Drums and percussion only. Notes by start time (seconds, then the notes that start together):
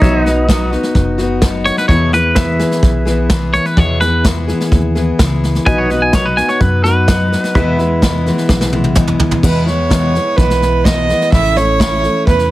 0.02 kick, snare
0.26 snare
0.49 kick, snare, hi-hat pedal
0.73 snare
0.83 snare
0.95 kick, snare
1.18 snare
1.42 kick, snare, hi-hat pedal
1.66 snare
1.77 snare
1.89 kick, snare
2.13 snare
2.36 kick, snare, hi-hat pedal
2.59 snare
2.71 snare
2.83 kick, snare
3.07 snare
3.30 kick, snare, hi-hat pedal
3.54 snare
3.65 snare
3.77 kick, snare
4.01 snare
4.25 kick, snare, hi-hat pedal
4.48 snare
4.60 snare
4.71 kick, snare
4.96 snare
5.19 kick, snare, hi-hat pedal
5.44 snare
5.55 snare
5.66 kick, snare
5.90 snare
6.13 kick, snare, hi-hat pedal
6.37 snare
6.49 snare
6.60 kick, snare
6.84 snare
7.08 kick, snare, hi-hat pedal
7.32 snare
7.44 snare
7.55 kick, snare
7.79 snare
8.02 kick, snare, hi-hat pedal
8.26 snare
8.38 snare
8.49 kick, snare
8.61 snare
8.73 high tom
8.84 high tom
8.95 kick, hi-hat pedal, mid tom
9.07 mid tom
9.20 floor tom
9.31 floor tom
9.43 kick, snare, crash
9.67 snare
9.91 kick, snare, hi-hat pedal
10.15 snare
10.38 kick, snare
10.50 snare
10.62 snare
10.85 kick, snare, hi-hat pedal
11.09 snare
11.21 snare
11.32 kick, snare
11.56 snare
11.80 kick, snare, hi-hat pedal
12.04 snare
12.27 kick, snare
12.39 snare